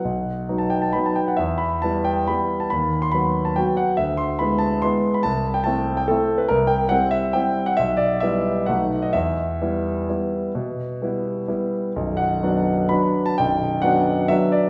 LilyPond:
<<
  \new Staff \with { instrumentName = "Grand piano" } { \time 3/4 \key e \minor \tempo 4 = 134 fis''4~ fis''16 a''16 g''16 a''16 b''16 a''16 g''16 fis''16 | e''8 b''8 a''8 g''8 b''8. a''16 | b''8. c'''16 b''8. a''16 g''8 fis''8 | e''8 c'''8 b''8 a''8 c'''8. b''16 |
a''8. g''16 a''8. g''16 a'8. b'16 | ais'8 g''8 fis''8 e''8 g''8. fis''16 | e''8 d''8 e''4 fis''8. dis''16 | e''2.~ |
e''2~ e''8 r8 | \key b \minor r8 fis''4. b''8. a''16 | g''4 fis''4 e''8 d''8 | }
  \new Staff \with { instrumentName = "Grand piano" } { \time 3/4 \key e \minor b,,4 <fis b dis'>4 <fis b dis'>4 | e,4 <g b e'>4 <g b e'>4 | dis,4 <fis b fis'>4 <fis b fis'>4 | d,4 <gis b e'>4 <gis b e'>4 |
c,4 <a c' e'>4 <a c' e'>4 | c,4 <g c' e'>4 <g c' e'>4 | b,,4 <g b e'>4 <b,, a b dis'>4 | e,4 <g b e'>4 <g b e'>4 |
b,4 <g b e'>4 <g b e'>4 | \key b \minor <b,,, b,,>4 <fis b d'>4 <fis b d'>4 | <b,,, b,,>4 <fis b d'>4 <fis b d'>4 | }
>>